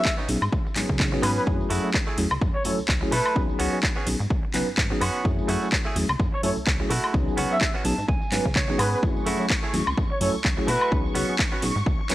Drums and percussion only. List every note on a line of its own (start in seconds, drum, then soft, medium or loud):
0.05 kick loud
0.05 clap loud
0.19 tambourine soft
0.28 open hi-hat loud
0.28 tambourine medium
0.42 tambourine soft
0.42 high woodblock medium
0.53 kick loud
0.53 tambourine soft
0.67 tambourine soft
0.76 clap medium
0.76 open hi-hat loud
0.76 tambourine medium
0.90 kick medium
0.90 tambourine soft
1.00 kick loud
1.00 clap loud
1.23 open hi-hat loud
1.23 tambourine loud
1.23 high woodblock medium
1.37 tambourine soft
1.46 kick loud
1.46 tambourine soft
1.61 tambourine soft
1.70 open hi-hat loud
1.70 tambourine loud
1.84 tambourine soft
1.94 kick loud
1.94 clap loud
2.06 tambourine soft
2.18 open hi-hat loud
2.18 tambourine medium
2.30 tambourine soft
2.30 high woodblock medium
2.41 kick loud
2.41 tambourine soft
2.64 open hi-hat loud
2.64 tambourine loud
2.79 tambourine soft
2.88 kick loud
2.88 clap loud
3.12 open hi-hat loud
3.12 tambourine medium
3.25 tambourine soft
3.25 high woodblock medium
3.35 kick loud
3.35 tambourine medium
3.49 tambourine soft
3.59 open hi-hat medium
3.59 tambourine medium
3.72 tambourine soft
3.83 kick loud
3.83 clap loud
3.83 tambourine soft
3.96 tambourine soft
4.06 open hi-hat loud
4.06 tambourine medium
4.20 tambourine soft
4.30 kick loud
4.30 tambourine soft
4.54 clap medium
4.54 open hi-hat loud
4.54 tambourine medium
4.68 tambourine soft
4.78 kick loud
4.78 clap loud
5.01 open hi-hat loud
5.01 tambourine loud
5.01 high woodblock medium
5.14 tambourine soft
5.25 kick loud
5.25 tambourine medium
5.39 tambourine soft
5.48 open hi-hat medium
5.48 tambourine medium
5.62 tambourine soft
5.72 kick loud
5.72 clap loud
5.86 tambourine soft
5.96 open hi-hat loud
5.96 tambourine medium
6.08 tambourine soft
6.08 high woodblock medium
6.20 kick loud
6.20 tambourine soft
6.43 open hi-hat loud
6.43 tambourine loud
6.56 tambourine soft
6.67 kick loud
6.67 clap loud
6.90 open hi-hat loud
6.90 tambourine medium
7.04 tambourine soft
7.04 high woodblock medium
7.14 kick loud
7.14 tambourine soft
7.28 tambourine soft
7.37 open hi-hat medium
7.37 tambourine medium
7.51 tambourine soft
7.61 kick loud
7.61 clap loud
7.74 tambourine soft
7.85 open hi-hat loud
7.85 tambourine medium
7.98 tambourine soft
8.08 kick loud
8.08 tambourine soft
8.22 tambourine soft
8.32 clap medium
8.32 open hi-hat loud
8.32 tambourine loud
8.45 kick medium
8.45 tambourine soft
8.56 kick loud
8.56 clap loud
8.56 tambourine medium
8.70 tambourine soft
8.79 open hi-hat loud
8.79 tambourine medium
8.79 high woodblock medium
8.93 tambourine soft
9.03 kick loud
9.03 tambourine medium
9.16 tambourine soft
9.26 open hi-hat loud
9.26 tambourine medium
9.40 tambourine soft
9.50 kick loud
9.50 clap loud
9.64 tambourine soft
9.73 open hi-hat loud
9.73 tambourine medium
9.87 tambourine soft
9.87 high woodblock medium
9.97 kick loud
9.97 tambourine medium
10.21 open hi-hat loud
10.21 tambourine medium
10.34 tambourine soft
10.44 kick loud
10.44 clap loud
10.68 open hi-hat loud
10.68 tambourine medium
10.81 tambourine soft
10.81 high woodblock medium
10.91 kick loud
10.91 tambourine medium
11.06 tambourine soft
11.15 open hi-hat loud
11.15 tambourine loud
11.29 tambourine soft
11.39 kick loud
11.39 clap loud
11.53 tambourine soft
11.62 open hi-hat loud
11.62 tambourine medium
11.76 tambourine soft
11.86 kick loud
11.86 tambourine medium
12.10 clap medium
12.10 open hi-hat loud
12.10 tambourine loud